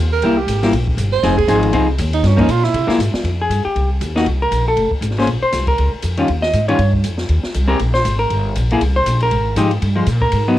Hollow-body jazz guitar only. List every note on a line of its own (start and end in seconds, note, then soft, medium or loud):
0.23 0.36 G3 medium
0.23 0.37 A#3 medium
0.23 0.37 E4 medium
0.63 0.72 G3 medium
0.63 0.72 A#3 medium
0.63 0.73 E4 medium
1.23 1.36 F3 medium
1.23 1.36 C4 medium
1.23 1.37 D#4 medium
1.23 1.37 G#4 medium
1.48 1.72 F3 medium
1.48 1.72 C4 medium
1.48 1.73 D#4 medium
1.48 1.73 G#4 medium
1.73 1.86 F3 medium
1.73 1.87 C4 medium
1.73 1.87 D#4 medium
1.73 1.87 G#4 medium
2.37 2.47 F3 medium
2.37 2.48 A#3 medium
2.37 2.48 C#4 medium
2.87 2.97 G#3 medium
2.87 2.98 A#3 medium
2.87 2.98 E4 medium
3.41 3.64 G#4 medium
3.65 3.88 G4 medium
4.16 4.25 A#3 medium
4.16 4.25 D#4 medium
4.16 4.26 F#4 medium
4.42 4.65 A#4 loud
4.68 4.91 A4 medium
5.18 5.27 A#3 medium
5.18 5.27 C#4 medium
5.18 5.27 G#4 medium
5.18 5.28 C5 medium
5.43 5.66 C5 medium
5.68 5.91 A#4 medium
6.18 6.27 D#3 medium
6.18 6.28 G3 medium
6.18 6.28 C#4 medium
6.18 6.28 F4 medium
6.42 6.66 D#5 loud
6.68 6.78 D#3 medium
6.68 6.78 G3 medium
6.68 6.78 C#4 medium
6.68 6.78 F4 medium
6.68 6.92 C#5 medium
7.68 7.78 G#3 medium
7.68 7.78 C4 medium
7.68 7.78 G4 medium
7.68 7.78 A#4 medium
7.94 8.18 C5 loud
8.19 8.53 A#4 medium
8.72 8.80 A#3 medium
8.72 8.81 E4 medium
8.72 8.81 G#4 medium
8.96 9.19 C5 loud
9.23 9.55 A#4 loud
9.57 9.70 F3 medium
9.57 9.70 G#3 medium
9.57 9.70 D#4 medium
9.57 9.70 G4 medium
9.96 10.05 F3 medium
9.96 10.05 G#3 medium
10.22 10.55 A#4 loud
10.48 10.57 F#3 medium
10.48 10.57 B3 medium
10.48 10.57 D#4 medium